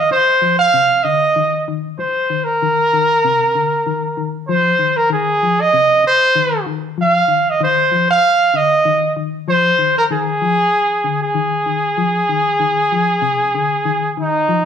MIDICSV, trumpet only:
0, 0, Header, 1, 2, 480
1, 0, Start_track
1, 0, Tempo, 625000
1, 86, Time_signature, 4, 2, 24, 8
1, 11252, End_track
2, 0, Start_track
2, 0, Title_t, "Trumpet"
2, 0, Program_c, 0, 56
2, 0, Note_on_c, 0, 75, 100
2, 85, Note_off_c, 0, 75, 0
2, 90, Note_on_c, 0, 72, 108
2, 430, Note_off_c, 0, 72, 0
2, 451, Note_on_c, 0, 77, 122
2, 798, Note_on_c, 0, 75, 103
2, 809, Note_off_c, 0, 77, 0
2, 1282, Note_off_c, 0, 75, 0
2, 1528, Note_on_c, 0, 72, 87
2, 1877, Note_on_c, 0, 70, 104
2, 1889, Note_off_c, 0, 72, 0
2, 3324, Note_off_c, 0, 70, 0
2, 3436, Note_on_c, 0, 72, 101
2, 3815, Note_on_c, 0, 70, 102
2, 3826, Note_off_c, 0, 72, 0
2, 3925, Note_off_c, 0, 70, 0
2, 3938, Note_on_c, 0, 68, 102
2, 4311, Note_on_c, 0, 75, 123
2, 4322, Note_off_c, 0, 68, 0
2, 4653, Note_off_c, 0, 75, 0
2, 4664, Note_on_c, 0, 72, 113
2, 5103, Note_off_c, 0, 72, 0
2, 5391, Note_on_c, 0, 77, 112
2, 5762, Note_on_c, 0, 75, 97
2, 5773, Note_off_c, 0, 77, 0
2, 5858, Note_off_c, 0, 75, 0
2, 5865, Note_on_c, 0, 72, 105
2, 6196, Note_off_c, 0, 72, 0
2, 6228, Note_on_c, 0, 77, 124
2, 6576, Note_on_c, 0, 75, 104
2, 6588, Note_off_c, 0, 77, 0
2, 7049, Note_off_c, 0, 75, 0
2, 7293, Note_on_c, 0, 72, 106
2, 7629, Note_off_c, 0, 72, 0
2, 7665, Note_on_c, 0, 70, 103
2, 7712, Note_off_c, 0, 70, 0
2, 7781, Note_on_c, 0, 68, 103
2, 8588, Note_off_c, 0, 68, 0
2, 8621, Note_on_c, 0, 68, 90
2, 10857, Note_off_c, 0, 68, 0
2, 10911, Note_on_c, 0, 63, 90
2, 11252, Note_off_c, 0, 63, 0
2, 11252, End_track
0, 0, End_of_file